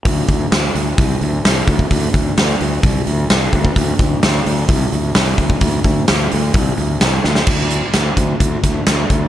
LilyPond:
<<
  \new Staff \with { instrumentName = "Fingered electric bass" } { \clef bass \time 4/4 \key c \mixolydian \tempo 4 = 129 d,8 d,8 d,8 d,8 c,8 d,8 c,8 d,8 | d,8 d,8 d,8 d,8 c,8 d,8 c,8 d,8 | d,8 d,8 d,8 d,8 c,8 d,8 c,8 d,8 | d,8 d,8 d,8 d,8 c,8 d,8 c,8 d,8 |
d,4 d,8 d,8 d,8 d,8 d,8 d,8 | }
  \new DrumStaff \with { instrumentName = "Drums" } \drummode { \time 4/4 <hho bd>8 <hho bd>8 <hho sn>8 hho8 <hho bd>8 hho8 <hho sn>8 <hho bd>16 bd16 | <hho bd>8 <hho bd>8 <hho sn>8 hho8 <hho bd>8 hho8 <hho sn>8 <hho bd>16 bd16 | <hho bd>8 <hho bd>8 <hho sn>8 hho8 <hho bd>8 hho8 <hho sn>8 <hho bd>16 bd16 | <hho bd>8 <hho bd>8 <hho sn>8 hho8 <hho bd>8 hho8 <hho sn>8 sn16 sn16 |
<cymc bd>8 hh8 <hh sn>8 <hh bd>8 <hh bd>8 <hh bd sn>8 <hh sn>8 <hh bd>8 | }
>>